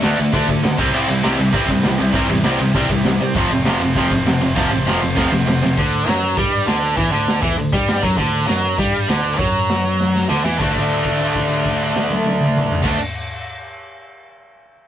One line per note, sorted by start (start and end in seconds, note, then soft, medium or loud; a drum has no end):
0.00 0.77 D3 medium
0.00 0.18 D3 medium
0.00 0.78 A3 medium
0.00 0.17 A3 loud
0.00 0.78 D4 medium
0.00 0.79 F#4 medium
0.00 0.79 A4 loud
0.00 snare loud
0.00 open hi-hat medium
0.04 0.16 D2 medium
0.04 0.19 D4 medium
0.19 0.31 D2 medium
0.19 0.32 D3 medium
0.19 0.32 A3 medium
0.33 0.46 D2 loud
0.33 0.48 D3 medium
0.33 0.48 A3 loud
0.33 0.48 D4 loud
0.33 kick loud
0.33 open hi-hat medium
0.48 0.61 D2 medium
0.48 0.62 D3 medium
0.48 0.62 A3 medium
0.48 kick medium
0.63 0.76 D2 loud
0.63 0.77 D3 medium
0.63 0.77 A3 medium
0.63 snare loud
0.63 open hi-hat medium
0.77 0.91 C2 medium
0.77 1.96 C3 medium
0.77 0.92 C3 medium
0.77 1.98 E3 medium
0.77 0.93 G3 medium
0.77 1.98 G3 loud
0.77 0.93 C4 medium
0.77 2.00 C4 loud
0.77 2.00 E4 medium
0.77 kick loud
0.93 1.06 C2 medium
0.93 1.08 C3 medium
0.93 1.07 G3 medium
0.93 1.08 C4 loud
0.93 crash loud
1.09 1.22 C2 medium
1.09 1.22 C3 medium
1.09 1.22 G3 medium
1.23 1.37 C2 medium
1.23 1.38 C3 medium
1.23 1.38 G3 medium
1.23 1.39 C4 loud
1.23 snare loud
1.23 open hi-hat medium
1.39 1.51 C2 medium
1.39 1.51 C3 medium
1.39 1.52 G3 medium
1.53 1.66 C2 medium
1.53 1.68 C3 loud
1.53 1.68 G3 loud
1.53 1.68 C4 loud
1.53 kick loud
1.53 open hi-hat medium
1.68 1.81 C2 medium
1.68 1.83 C3 medium
1.68 1.83 G3 medium
1.68 kick medium
1.83 1.97 C2 medium
1.83 1.97 C3 medium
1.83 1.97 G3 medium
1.83 snare loud
1.83 open hi-hat medium
1.97 2.12 C2 loud
1.97 3.18 C3 loud
1.97 2.11 C3 medium
1.97 3.19 E3 medium
1.97 2.13 G3 medium
1.97 3.19 G3 medium
1.97 3.36 C4 loud
1.97 3.20 E4 loud
2.12 2.26 C2 medium
2.12 2.28 C3 loud
2.12 2.28 G3 loud
2.12 2.29 C4 medium
2.12 kick loud
2.12 open hi-hat medium
2.29 2.42 E2 medium
2.29 2.42 C3 medium
2.29 2.43 G3 medium
2.43 2.57 C2 medium
2.43 2.58 C3 medium
2.43 2.58 G3 medium
2.43 2.59 C4 medium
2.43 snare loud
2.43 open hi-hat medium
2.59 2.72 C2 medium
2.59 2.73 C3 medium
2.59 2.73 G3 medium
2.74 2.87 C2 medium
2.74 2.89 C3 loud
2.74 2.89 G3 loud
2.74 2.90 C4 loud
2.74 kick loud
2.74 open hi-hat medium
2.89 3.02 C2 medium
2.89 3.04 C3 medium
2.89 3.04 G3 medium
2.89 kick medium
3.04 3.18 C2 medium
3.04 3.19 C3 medium
3.04 3.19 G3 medium
3.04 snare loud
3.04 open hi-hat medium
3.21 3.33 C3 medium
3.21 3.35 C3 medium
3.21 3.35 G3 medium
3.35 3.47 F1 medium
3.35 3.50 F2 medium
3.35 3.51 C3 medium
3.35 4.54 F3 medium
3.35 3.51 F3 loud
3.35 4.57 A3 medium
3.35 4.56 C4 medium
3.35 4.56 F4 medium
3.35 kick loud
3.35 open hi-hat medium
3.50 3.63 F1 medium
3.50 3.65 F2 medium
3.50 3.65 C3 medium
3.65 3.78 F1 medium
3.65 3.80 F2 medium
3.65 3.81 C3 medium
3.65 3.81 F3 medium
3.65 snare loud
3.65 open hi-hat medium
3.81 3.93 F1 medium
3.81 3.95 F2 medium
3.81 3.95 C3 medium
3.95 4.08 F1 loud
3.95 4.10 F2 loud
3.95 4.10 C3 loud
3.95 4.11 F3 loud
3.95 kick loud
3.95 open hi-hat medium
4.11 4.23 F1 medium
4.11 4.25 F2 medium
4.11 4.25 C3 medium
4.11 kick medium
4.26 4.38 F1 loud
4.26 4.40 F2 medium
4.26 4.40 C3 medium
4.26 snare loud
4.26 open hi-hat medium
4.41 4.53 F1 medium
4.41 4.54 F2 medium
4.41 4.55 C3 medium
4.55 4.69 F1 medium
4.55 4.69 F2 loud
4.55 4.70 C3 medium
4.55 5.76 F3 medium
4.55 4.71 F3 loud
4.55 5.76 A3 medium
4.55 5.77 C4 medium
4.55 5.77 F4 loud
4.55 kick loud
4.55 snare medium
4.71 4.84 A1 medium
4.71 4.85 F2 medium
4.71 4.85 C3 medium
4.86 4.99 F1 medium
4.86 5.00 F2 medium
4.86 5.01 C3 medium
4.86 5.01 F3 loud
4.86 snare medium
5.01 5.14 F1 medium
5.01 5.14 F2 medium
5.01 5.15 C3 medium
5.15 5.29 F1 medium
5.15 5.30 F2 medium
5.15 5.31 C3 loud
5.15 5.31 F3 medium
5.15 kick loud
5.15 snare medium
5.32 5.44 F1 medium
5.32 5.45 F2 medium
5.32 5.45 C3 medium
5.32 snare medium
5.46 5.59 F1 loud
5.46 5.60 F2 medium
5.46 5.61 C3 medium
5.46 snare medium
5.62 5.76 F2 medium
5.62 5.75 F2 medium
5.62 5.76 C3 medium
5.62 snare medium
5.78 6.06 D2 medium
5.78 6.08 D3 loud
5.78 kick medium
5.78 open hi-hat medium
6.07 6.35 F#2 medium
6.07 6.37 F#3 loud
6.07 snare loud
6.07 open hi-hat medium
6.37 6.65 G2 medium
6.37 6.67 G3 loud
6.37 kick loud
6.37 open hi-hat medium
6.66 6.95 D2 medium
6.66 6.96 D3 medium
6.66 snare loud
6.66 open hi-hat soft
6.97 7.12 E2 medium
6.97 7.11 E3 loud
6.97 kick medium
6.97 open hi-hat soft
7.11 7.41 D2 medium
7.11 7.41 D3 medium
7.27 snare loud
7.27 open hi-hat medium
7.42 7.57 E2 loud
7.42 7.57 E3 medium
7.42 kick loud
7.57 7.72 D2 medium
7.57 7.70 D3 medium
7.57 open hi-hat soft
7.73 8.01 G2 medium
7.73 8.03 G3 loud
7.73 kick loud
7.88 snare loud
7.88 open hi-hat soft
8.03 8.17 F#2 medium
8.03 8.17 F#3 loud
8.03 kick medium
8.18 8.47 D2 medium
8.18 8.47 D3 medium
8.18 kick medium
8.18 open hi-hat medium
8.48 8.77 F#2 medium
8.48 8.78 F#3 loud
8.48 snare loud
8.48 open hi-hat medium
8.78 9.07 G2 medium
8.78 9.08 G3 loud
8.78 kick loud
8.78 open hi-hat medium
9.09 9.37 D2 loud
9.09 9.38 D3 medium
9.09 snare loud
9.09 open hi-hat medium
9.38 10.26 F#2 medium
9.38 10.29 F#3 loud
9.38 kick loud
9.38 open hi-hat medium
9.69 snare loud
9.69 open hi-hat medium
10.00 snare medium
10.16 snare medium
10.29 10.44 D2 medium
10.29 10.44 D3 medium
10.29 snare medium
10.45 10.59 E2 medium
10.45 10.59 E3 medium
10.45 snare medium
10.59 12.76 D2 medium
10.59 12.82 D3 medium
10.59 12.84 A3 medium
10.59 12.86 D4 medium
10.59 kick medium
10.59 crash medium
10.75 kick medium
10.75 crash soft
10.90 crash soft
11.05 kick medium
11.05 crash soft
11.20 crash soft
11.35 kick medium
11.35 crash soft
11.51 crash soft
11.65 kick medium
11.65 crash soft
11.80 crash soft
11.96 snare medium
12.10 high tom medium
12.26 high tom medium
12.41 mid tom medium
12.57 mid tom medium
12.71 floor tom medium
12.82 12.97 D2 medium
12.82 12.97 D3 medium
12.82 12.98 A3 medium
12.82 12.99 D4 medium
12.82 kick loud
12.82 snare medium
12.82 crash medium